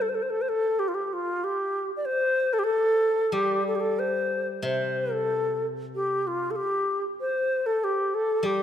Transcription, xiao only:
0.01 0.11 A4 medium
0.09 0.16 C5 medium
0.15 0.24 A4 medium
0.23 0.31 C5 medium
0.30 0.43 A4 medium
0.42 0.50 C5 medium
0.49 0.81 A4 medium
0.79 0.90 G4 medium
0.88 0.96 F4 medium
0.94 1.07 G4 medium
1.07 1.15 G4 medium
1.13 1.45 F4 medium
1.44 1.91 G4 medium
1.97 2.07 D5 medium
2.05 2.55 C5 medium
2.53 2.60 A4 medium
2.59 2.65 G4 medium
2.64 3.35 A4 medium
3.33 3.66 G4 medium
3.67 3.77 A4 medium
3.75 3.82 G4 medium
3.80 4.01 A4 medium
3.99 4.48 C5 medium
4.64 5.14 C5 medium
5.12 5.66 A4 medium
5.95 6.29 G4 medium
6.27 6.52 F4 medium
6.51 6.57 A4 medium
6.56 7.04 G4 medium
7.21 7.68 C5 medium
7.66 7.85 A4 medium
7.84 8.16 G4 medium
8.14 8.47 A4 medium
8.46 8.63 G4 medium

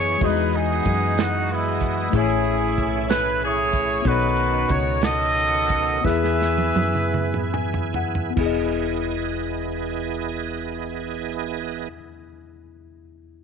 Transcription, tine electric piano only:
0.00 0.22 E3 medium
0.00 0.16 B3 medium
0.00 0.17 E4 medium
0.00 0.18 G#4 medium
0.00 0.23 D#5 medium
0.18 0.26 G3 soft
0.18 2.09 G#4 medium
0.22 1.13 E3 medium
0.22 2.11 G#3 medium
0.22 2.10 F#4 medium
0.22 2.11 D#5 medium
2.10 3.05 A2 medium
2.10 4.00 A3 medium
2.10 4.01 E4 soft
2.15 4.02 G#4 medium
2.15 4.03 C#5 medium
4.02 4.99 B2 medium
4.02 5.99 B3 medium
4.02 6.00 D#4 medium
4.07 6.02 A4 medium
4.07 6.03 C#5 medium
6.01 8.29 B3 medium
6.01 8.33 E4 soft
6.05 7.11 E3 medium
6.05 8.34 G#4 soft
6.05 8.35 E5 medium
7.54 7.92 G#5 medium
7.96 8.35 F#5 medium
8.31 11.81 B3 medium
8.36 11.88 E2 medium
8.36 11.86 E4 medium
8.41 11.91 G#4 medium
8.46 11.96 D#5 medium

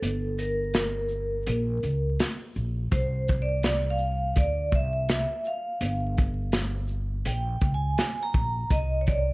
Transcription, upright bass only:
0.02 1.43 G1 medium
1.47 1.79 A#1 loud
1.83 2.15 C#2 medium
2.56 2.88 A#1 medium
2.92 4.33 C2 loud
4.37 4.68 D2 loud
4.72 5.23 C2 loud
5.81 7.22 G1 loud
7.26 7.57 A#1 medium
7.62 7.93 C#2 medium
8.34 8.66 A#1 medium
8.71 9.33 C2 loud

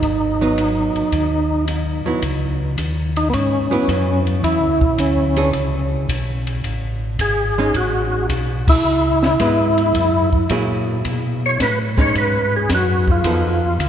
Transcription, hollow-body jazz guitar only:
0.41 1.10 F#3 medium
0.41 1.10 B3 medium
0.41 1.10 D#4 medium
2.06 2.21 F#3 medium
2.06 2.22 B3 medium
2.06 2.22 E4 medium
3.71 4.40 F#3 medium
3.71 4.40 B3 medium
3.71 4.41 E4 medium
5.36 5.52 E3 medium
5.36 5.52 D4 medium
5.36 5.52 G#4 medium
5.36 5.52 C#5 medium
7.58 7.73 G#3 medium
7.58 7.73 C#4 medium
7.58 7.74 D#4 medium
9.40 9.74 G#3 medium
9.40 9.74 B3 medium
9.40 9.75 E4 medium
10.51 11.05 F#3 medium
10.51 11.05 A#3 medium
10.51 11.06 E4 medium
10.51 11.06 G#4 medium
11.97 12.66 G#3 medium
11.97 12.67 C#4 medium
11.97 12.67 D#4 medium
13.25 13.59 F3 medium
13.25 13.60 B3 soft
13.25 13.60 D#4 medium
13.25 13.60 A4 medium

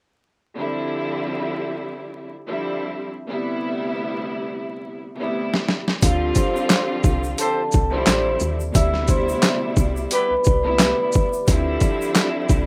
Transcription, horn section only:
7.41 7.62 C4 loud
7.41 7.62 G4 loud
7.41 7.62 A4 medium
7.41 7.62 C5 loud
10.13 10.34 B3 loud
10.13 10.34 E4 loud
10.13 10.34 G4 loud
10.13 10.34 B4 loud

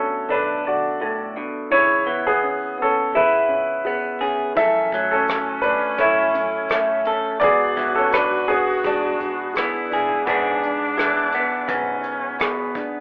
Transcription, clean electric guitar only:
0.00 1.36 B2 soft
0.00 1.68 F#3 soft
0.00 1.73 A3 soft
0.00 1.70 A4 soft
0.30 1.68 D4 soft
1.02 1.37 A2 soft
1.37 1.72 B2 soft
1.72 2.08 C#3 soft
2.07 4.94 E3 soft
3.15 4.60 E4 medium
3.87 4.53 B3 soft
4.21 4.52 G#4 soft
4.57 7.41 F#2 soft
4.94 7.38 F#3 medium
6.00 8.86 E4 medium
6.71 7.42 A3 soft
7.07 7.38 A4 soft
7.42 10.22 G#2 soft
7.76 10.97 E3 medium
8.86 10.23 D4 medium
9.59 10.24 B3 soft
9.93 10.23 G#4 medium
10.27 11.67 G#2 medium
10.27 11.34 B3 soft
10.27 10.63 D4 soft
10.27 13.00 G#4 soft
10.98 13.00 E3 soft
11.35 13.00 B3 soft
11.68 13.00 G#2 medium
12.40 12.75 B2 medium

